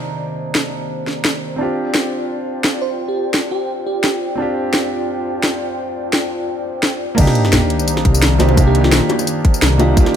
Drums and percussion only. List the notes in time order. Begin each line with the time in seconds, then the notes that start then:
0.55 snare
1.07 snare
1.25 snare
1.95 snare
2.64 snare
3.34 snare
4.04 snare
4.74 snare
5.43 snare
6.13 snare
6.83 snare
7.18 kick, closed hi-hat, crash, tambourine
7.27 snare
7.35 closed hi-hat
7.45 snare
7.53 snare, closed hi-hat, tambourine
7.70 closed hi-hat
7.79 tambourine
7.88 closed hi-hat, tambourine
7.97 snare
8.05 kick, closed hi-hat
8.14 tambourine
8.22 snare, closed hi-hat, tambourine
8.39 snare, closed hi-hat, tambourine, high bongo
8.49 high bongo
8.57 kick, closed hi-hat, tambourine
8.75 closed hi-hat
8.84 snare
8.92 snare, closed hi-hat, tambourine
9.09 open hi-hat, high bongo
9.19 tambourine, high bongo
9.27 closed hi-hat, tambourine
9.45 kick, closed hi-hat
9.54 tambourine
9.62 snare, closed hi-hat, tambourine
9.79 closed hi-hat, tambourine, high bongo
9.97 kick, closed hi-hat, tambourine
10.06 snare